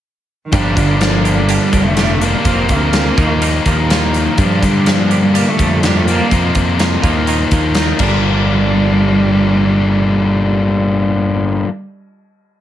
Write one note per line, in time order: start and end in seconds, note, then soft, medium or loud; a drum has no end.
0.45 0.54 D#3 medium
0.52 0.73 G1 medium
0.52 1.01 G2 medium
0.52 1.01 D3 medium
0.52 0.77 F3 medium
0.52 0.78 F3 medium
0.52 2.21 G3 medium
0.52 0.78 A#3 medium
0.52 0.76 D4 medium
0.52 0.75 G4 medium
0.52 kick medium
0.52 closed hi-hat medium
0.75 1.57 G1 medium
0.75 0.98 D3 medium
0.75 1.00 F3 medium
0.75 1.00 A#3 medium
0.75 1.00 D4 medium
0.75 1.01 G4 medium
0.75 kick medium
0.75 closed hi-hat medium
0.99 1.37 F3 medium
0.99 1.26 F3 medium
0.99 1.25 A#3 medium
0.99 1.24 D4 medium
0.99 1.23 G4 medium
0.99 snare medium
0.99 closed hi-hat medium
1.24 1.49 F3 soft
1.24 1.49 A#3 medium
1.24 1.49 D4 medium
1.24 1.49 G4 medium
1.24 closed hi-hat medium
1.35 1.86 G3 medium
1.48 1.97 G2 medium
1.48 1.97 D3 medium
1.48 1.74 F3 medium
1.48 1.97 A#3 medium
1.48 1.72 D4 medium
1.48 1.71 G4 medium
1.48 closed hi-hat medium
1.72 2.34 F1 medium
1.72 1.96 F3 medium
1.72 1.97 D4 medium
1.72 1.98 G4 medium
1.72 kick medium
1.72 closed hi-hat medium
1.85 2.23 A3 medium
1.96 2.46 F3 medium
1.96 2.46 A#3 medium
1.96 2.45 D4 medium
1.96 2.45 G4 medium
1.96 snare medium
1.96 closed hi-hat medium
2.21 2.44 G2 medium
2.21 2.46 D3 medium
2.21 2.46 G3 medium
2.21 2.69 A#3 medium
2.21 2.47 A#3 medium
2.21 2.44 D4 medium
2.21 closed hi-hat medium
2.45 2.65 F1 medium
2.45 2.94 F2 medium
2.45 2.94 C3 medium
2.45 2.72 F3 medium
2.45 2.71 A#3 medium
2.45 2.70 C4 medium
2.45 2.69 F4 medium
2.45 kick medium
2.45 closed hi-hat medium
2.69 3.10 D2 medium
2.69 2.93 F3 medium
2.69 3.63 A#3 medium
2.69 2.93 A#3 soft
2.69 2.93 C4 medium
2.69 2.95 F4 medium
2.69 kick medium
2.69 closed hi-hat medium
2.93 3.18 F3 medium
2.93 3.18 A#3 medium
2.93 3.17 C4 medium
2.93 3.17 F4 medium
2.93 snare medium
2.93 closed hi-hat medium
3.17 3.58 D#2 medium
3.17 3.40 D#3 medium
3.17 4.40 F3 medium
3.17 3.42 A#3 medium
3.17 3.42 D#4 medium
3.17 3.43 F4 medium
3.17 kick medium
3.17 closed hi-hat medium
3.41 3.88 D#3 medium
3.41 3.66 A#3 medium
3.41 3.64 D#4 medium
3.41 3.64 F4 medium
3.41 closed hi-hat medium
3.65 4.26 D#2 medium
3.65 3.89 A#3 soft
3.65 3.89 D#4 medium
3.65 3.90 F4 medium
3.65 kick medium
3.65 closed hi-hat medium
3.89 4.37 D#3 medium
3.89 4.38 A#3 medium
3.89 4.37 D#4 medium
3.89 4.38 F4 medium
3.89 snare medium
3.89 closed hi-hat medium
4.14 closed hi-hat medium
4.36 4.86 G2 medium
4.36 4.58 G2 medium
4.36 4.86 D3 medium
4.36 4.63 F3 medium
4.36 6.07 G3 medium
4.36 4.62 A#3 medium
4.36 4.60 D4 medium
4.36 4.59 G4 medium
4.36 kick medium
4.36 closed hi-hat medium
4.40 4.66 F3 medium
4.61 5.43 G2 medium
4.61 4.89 D3 medium
4.61 4.85 F3 soft
4.61 4.86 A#3 medium
4.61 4.86 D4 medium
4.61 4.86 G4 medium
4.61 kick medium
4.61 closed hi-hat medium
4.85 5.11 F3 medium
4.85 5.24 F3 medium
4.85 5.11 A#3 medium
4.85 5.10 D4 medium
4.85 5.09 G4 medium
4.85 snare medium
4.85 closed hi-hat medium
5.10 5.34 F3 soft
5.10 5.59 A#3 soft
5.10 5.34 D4 soft
5.10 5.34 G4 medium
5.10 closed hi-hat medium
5.22 5.35 G3 medium
5.33 5.82 G2 medium
5.33 5.83 D3 medium
5.33 5.60 F3 medium
5.33 5.49 A#3 medium
5.33 5.58 D4 medium
5.33 5.57 G4 medium
5.33 closed hi-hat medium
5.48 5.84 A3 medium
5.58 6.20 F2 medium
5.58 5.82 F3 soft
5.58 5.83 A#3 medium
5.58 5.83 D4 medium
5.58 5.84 G4 medium
5.58 kick medium
5.58 closed hi-hat medium
5.82 6.32 F3 medium
5.82 5.98 G3 medium
5.82 6.32 A#3 medium
5.82 6.30 D4 medium
5.82 6.31 G4 medium
5.82 snare medium
5.82 closed hi-hat medium
5.96 6.07 A3 medium
6.07 6.31 G2 medium
6.07 6.31 D3 medium
6.07 6.31 G3 medium
6.07 6.52 A#3 medium
6.07 6.35 A#3 medium
6.07 6.30 D4 medium
6.07 closed hi-hat medium
6.31 6.79 F2 medium
6.31 6.52 F2 medium
6.31 6.80 C3 medium
6.31 6.56 F3 medium
6.31 6.56 A#3 medium
6.31 6.55 C4 medium
6.31 6.54 F4 medium
6.31 kick medium
6.31 closed hi-hat medium
6.55 6.96 F2 medium
6.55 6.78 F3 soft
6.55 6.79 A#3 soft
6.55 6.79 C4 medium
6.55 6.80 F4 medium
6.55 kick medium
6.55 closed hi-hat medium
6.79 7.02 F3 medium
6.79 7.03 A#3 medium
6.79 7.03 C4 medium
6.79 7.01 F4 medium
6.79 snare medium
6.79 closed hi-hat medium
7.02 7.44 D#2 medium
7.02 7.26 D#3 medium
7.02 8.01 F3 medium
7.02 7.27 A#3 medium
7.02 7.28 D#4 medium
7.02 7.28 F4 medium
7.02 kick medium
7.02 closed hi-hat medium
7.27 7.74 D#3 medium
7.27 7.52 A#3 medium
7.27 7.51 D#4 medium
7.27 7.51 F4 medium
7.27 closed hi-hat medium
7.51 7.92 D#2 medium
7.51 7.75 A#3 medium
7.51 7.75 D#4 medium
7.51 7.76 F4 medium
7.51 kick medium
7.51 closed hi-hat medium
7.75 8.00 D#3 medium
7.75 8.00 A#3 medium
7.75 8.00 D#4 medium
7.75 8.01 F4 medium
7.75 snare medium
7.75 closed hi-hat medium
7.99 11.63 G1 medium
7.99 11.66 G2 medium
7.99 11.68 D3 medium
7.99 11.69 F3 medium
7.99 11.62 G3 medium
7.99 11.69 G3 medium
7.99 11.69 A#3 medium
7.99 kick medium
7.99 crash medium
8.03 11.70 D4 loud
8.03 11.71 G4 loud